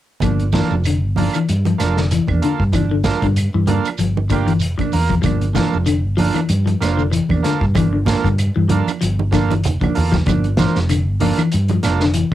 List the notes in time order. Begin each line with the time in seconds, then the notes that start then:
0.20 G1 F3 A#3 D4, kick, closed hi-hat, low conga, claves, shekere
0.40 closed hi-hat
0.53 E3 F3 A#3 D4 F4 A4, kick, snare, closed hi-hat, high conga, shekere
0.70 F1, high conga, shekere
0.84 D3, closed hi-hat, claves, shekere
1.04 G1
1.16 F3 A#3 D4 F4 A4, open hi-hat, high conga, low conga, shekere
1.34 E3, closed hi-hat, claves, shekere
1.49 G2, closed hi-hat, shekere
1.65 F3, closed hi-hat, high conga
1.78 F1 F3 A#3 D4 F4 A4, snare, closed hi-hat, claves, shekere
1.97 D3, snare, shekere
2.11 E3, closed hi-hat, shekere
2.27 E2 A#3 D4, kick, high conga, claves
2.42 D3 A#3 F4 A4, muted fingered electric bass stroke, closed hi-hat, shekere
2.60 G2, kick
2.72 G1 E3 F3 D4, muted clean electric guitar stroke, kick, closed hi-hat, low conga, claves, shekere
2.91 D3
3.04 F3 A#3 D4 F4 A4, kick, snare, closed hi-hat, high conga, shekere
3.22 G2 D3, kick, closed hi-hat, shekere
3.36 closed hi-hat, claves, shekere
3.54 G2 E3
3.67 F3 A#3 D4 F4 A4, closed hi-hat, high conga, low conga, shekere
3.85 closed hi-hat, claves, shekere
3.98 G1 F3, closed hi-hat, shekere
4.17 high conga
4.29 D3 F3 A#3 D4 F4 G4, kick, closed hi-hat, claves, shekere
4.47 E3, closed hi-hat, shekere
4.60 F1, closed hi-hat, shekere
4.78 F3 A#3 D4, kick, closed hi-hat, high conga, claves
4.92 E2 A#3 F4 A#4, open hi-hat, shekere
5.09 F3, kick, closed hi-hat
5.22 G1 F3 A#3 D4, kick, closed hi-hat, low conga, shekere
5.26 claves
5.41 closed hi-hat
5.53 E3 F3 A#3 D4 F4 A4, kick, snare, closed hi-hat, high conga, shekere
5.73 F1, high conga, shekere
5.86 D3, closed hi-hat, claves, shekere
6.05 G1
6.17 F3 A#3 D4 F4 A4, open hi-hat, high conga, low conga, shekere
6.34 E3, closed hi-hat, high conga, claves, shekere
6.49 G2, closed hi-hat, high conga, shekere
6.66 F3, closed hi-hat, high conga
6.81 F1 F3 A#3 D4 F4 C5, snare, closed hi-hat, claves, shekere
6.97 D3, shekere
7.11 E3, closed hi-hat, shekere
7.29 E2 A#3 D4, kick, high conga, claves
7.43 D3 A#3 F4 A4, muted fingered electric bass stroke, snare, closed hi-hat, shekere
7.61 G2, kick
7.75 G1 E3 F3 A#3 D4, kick, closed hi-hat, low conga, claves, shekere
7.93 D3
8.05 F3 A#3 D4 F4 A4, kick, snare, closed hi-hat, high conga, shekere
8.24 G2 D3, kick, closed hi-hat, shekere
8.38 closed hi-hat, claves, shekere
8.56 G2 E3
8.68 F3 A#3 D4 F4 A4, closed hi-hat, high conga, low conga, shekere
8.87 closed hi-hat, high conga, claves, shekere
9.01 G1 F3, closed hi-hat, shekere
9.19 high conga
9.31 D3 F3 A#3 D4 F4 A4, kick, snare, closed hi-hat, high conga, claves, shekere
9.50 E3, closed hi-hat, high conga, shekere
9.64 F1, closed hi-hat, low conga, shekere
9.80 F3 A#3 D4, muted fingered electric bass stroke, kick, closed hi-hat, low conga, claves
9.95 E2 A#3 F4 A4, open hi-hat, low conga, shekere
10.12 F3, kick, snare, closed hi-hat, low conga
10.26 G1 F3 A#3 D4, kick, closed hi-hat, low conga, claves, shekere
10.44 closed hi-hat
10.57 E3 F3 A#3 D4 F4 C5, kick, snare, closed hi-hat, high conga, shekere
10.76 F1, snare, high conga, shekere
10.89 D3, closed hi-hat, claves, shekere
11.08 G1
11.20 F3 A#3 D4 F4 A4, open hi-hat, high conga, low conga, shekere
11.38 E3, closed hi-hat, high conga, claves, shekere
11.52 G2, closed hi-hat, shekere
11.68 F3, closed hi-hat, high conga
11.83 F1 A#3 D4 F4 A4, muted clean electric guitar stroke, snare, closed hi-hat, claves, shekere
12.00 D3, snare, shekere
12.14 E3, closed hi-hat, shekere